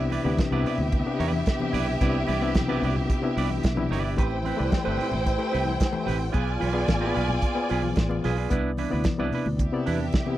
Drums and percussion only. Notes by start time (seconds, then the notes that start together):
0.10 open hi-hat, high conga
0.37 kick, snare, closed hi-hat, muted conga, high conga
0.52 muted conga
0.64 open hi-hat, low conga
0.78 low conga
0.92 kick, closed hi-hat
1.20 open hi-hat
1.32 high conga
1.46 kick, snare, closed hi-hat, muted conga, high conga
1.60 muted conga, high conga
1.73 snare, open hi-hat, low conga
2.01 kick, closed hi-hat
2.15 muted conga
2.27 open hi-hat, high conga
2.55 kick, snare, closed hi-hat, muted conga, high conga
2.82 open hi-hat, low conga
2.96 low conga
3.10 kick, closed hi-hat
3.38 open hi-hat
3.49 high conga
3.63 kick, snare, closed hi-hat, muted conga, high conga
3.77 muted conga, high conga
3.89 snare, open hi-hat, low conga
4.17 kick, closed hi-hat, muted conga
4.31 muted conga
4.43 open hi-hat, high conga
4.71 kick, snare, closed hi-hat, high conga
4.85 muted conga
4.97 open hi-hat, low conga
5.12 low conga
5.25 kick, closed hi-hat, muted conga
5.39 muted conga
5.54 open hi-hat
5.65 high conga
5.80 kick, snare, closed hi-hat, high conga
5.93 muted conga, high conga
6.06 snare, open hi-hat, low conga
6.34 kick, closed hi-hat, muted conga
6.47 muted conga
6.60 open hi-hat, high conga
6.88 kick, snare, closed hi-hat, muted conga, high conga
7.15 open hi-hat, low conga
7.29 low conga
7.42 kick, closed hi-hat, muted conga
7.57 muted conga
7.69 open hi-hat
7.83 high conga
7.96 kick, snare, closed hi-hat, high conga
8.11 muted conga, high conga
8.24 snare, open hi-hat, low conga
8.50 kick, closed hi-hat
8.77 open hi-hat, high conga
9.04 kick, snare, closed hi-hat, muted conga, high conga
9.32 open hi-hat, low conga
9.46 low conga
9.58 kick, closed hi-hat, muted conga
9.87 open hi-hat
9.98 high conga
10.13 kick, snare, closed hi-hat, high conga
10.26 muted conga, high conga